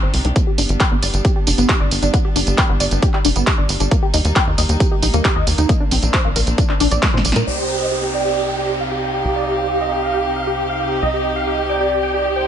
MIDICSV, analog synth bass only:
0, 0, Header, 1, 2, 480
1, 0, Start_track
1, 0, Key_signature, -3, "minor"
1, 0, Tempo, 444444
1, 388, Time_signature, 4, 2, 24, 8
1, 13473, End_track
2, 0, Start_track
2, 0, Title_t, "Analog synth bass"
2, 0, Program_c, 0, 38
2, 29, Note_on_c, 0, 31, 74
2, 110, Note_off_c, 0, 31, 0
2, 149, Note_on_c, 0, 36, 93
2, 230, Note_off_c, 0, 36, 0
2, 269, Note_on_c, 0, 36, 78
2, 350, Note_off_c, 0, 36, 0
2, 629, Note_on_c, 0, 31, 95
2, 710, Note_off_c, 0, 31, 0
2, 749, Note_on_c, 0, 31, 84
2, 830, Note_off_c, 0, 31, 0
2, 989, Note_on_c, 0, 31, 73
2, 1070, Note_off_c, 0, 31, 0
2, 1109, Note_on_c, 0, 31, 94
2, 1190, Note_off_c, 0, 31, 0
2, 1228, Note_on_c, 0, 31, 81
2, 1310, Note_off_c, 0, 31, 0
2, 1588, Note_on_c, 0, 29, 96
2, 1670, Note_off_c, 0, 29, 0
2, 1707, Note_on_c, 0, 31, 86
2, 1789, Note_off_c, 0, 31, 0
2, 1948, Note_on_c, 0, 31, 74
2, 2030, Note_off_c, 0, 31, 0
2, 2068, Note_on_c, 0, 31, 91
2, 2150, Note_off_c, 0, 31, 0
2, 2187, Note_on_c, 0, 31, 80
2, 2269, Note_off_c, 0, 31, 0
2, 2548, Note_on_c, 0, 31, 94
2, 2629, Note_off_c, 0, 31, 0
2, 2668, Note_on_c, 0, 31, 81
2, 2749, Note_off_c, 0, 31, 0
2, 2908, Note_on_c, 0, 31, 75
2, 2990, Note_off_c, 0, 31, 0
2, 3028, Note_on_c, 0, 31, 92
2, 3110, Note_off_c, 0, 31, 0
2, 3149, Note_on_c, 0, 31, 82
2, 3230, Note_off_c, 0, 31, 0
2, 3508, Note_on_c, 0, 29, 95
2, 3590, Note_off_c, 0, 29, 0
2, 3629, Note_on_c, 0, 31, 85
2, 3710, Note_off_c, 0, 31, 0
2, 3869, Note_on_c, 0, 31, 75
2, 3950, Note_off_c, 0, 31, 0
2, 3989, Note_on_c, 0, 31, 94
2, 4070, Note_off_c, 0, 31, 0
2, 4109, Note_on_c, 0, 31, 76
2, 4190, Note_off_c, 0, 31, 0
2, 4468, Note_on_c, 0, 39, 98
2, 4550, Note_off_c, 0, 39, 0
2, 4588, Note_on_c, 0, 39, 83
2, 4669, Note_off_c, 0, 39, 0
2, 4828, Note_on_c, 0, 39, 76
2, 4910, Note_off_c, 0, 39, 0
2, 4947, Note_on_c, 0, 39, 94
2, 5029, Note_off_c, 0, 39, 0
2, 5067, Note_on_c, 0, 39, 82
2, 5149, Note_off_c, 0, 39, 0
2, 5428, Note_on_c, 0, 34, 94
2, 5510, Note_off_c, 0, 34, 0
2, 5548, Note_on_c, 0, 39, 84
2, 5630, Note_off_c, 0, 39, 0
2, 5787, Note_on_c, 0, 39, 79
2, 5869, Note_off_c, 0, 39, 0
2, 5907, Note_on_c, 0, 39, 92
2, 5989, Note_off_c, 0, 39, 0
2, 6028, Note_on_c, 0, 39, 82
2, 6110, Note_off_c, 0, 39, 0
2, 6388, Note_on_c, 0, 34, 98
2, 6470, Note_off_c, 0, 34, 0
2, 6509, Note_on_c, 0, 34, 85
2, 6590, Note_off_c, 0, 34, 0
2, 6748, Note_on_c, 0, 34, 75
2, 6830, Note_off_c, 0, 34, 0
2, 6869, Note_on_c, 0, 34, 95
2, 6950, Note_off_c, 0, 34, 0
2, 6988, Note_on_c, 0, 34, 80
2, 7070, Note_off_c, 0, 34, 0
2, 7347, Note_on_c, 0, 34, 96
2, 7429, Note_off_c, 0, 34, 0
2, 7469, Note_on_c, 0, 34, 84
2, 7550, Note_off_c, 0, 34, 0
2, 7708, Note_on_c, 0, 46, 76
2, 7790, Note_off_c, 0, 46, 0
2, 7829, Note_on_c, 0, 34, 92
2, 7910, Note_off_c, 0, 34, 0
2, 7949, Note_on_c, 0, 46, 79
2, 8030, Note_off_c, 0, 46, 0
2, 8068, Note_on_c, 0, 36, 85
2, 9964, Note_off_c, 0, 36, 0
2, 9987, Note_on_c, 0, 36, 84
2, 11883, Note_off_c, 0, 36, 0
2, 11906, Note_on_c, 0, 36, 89
2, 13473, Note_off_c, 0, 36, 0
2, 13473, End_track
0, 0, End_of_file